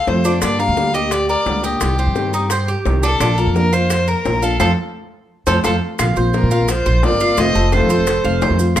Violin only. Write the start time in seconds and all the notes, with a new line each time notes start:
0.08 C5
0.42 D5
0.59 F5
0.94 D#5
1.12 D5
1.29 D5
1.64 G4
3.04 A4
3.56 A#4
3.73 C5
4.08 A#4
4.43 A4
4.60 A4
5.47 A4
5.65 A4
6.35 A#4
6.70 C5
7.05 D5
7.40 D#5
7.74 C5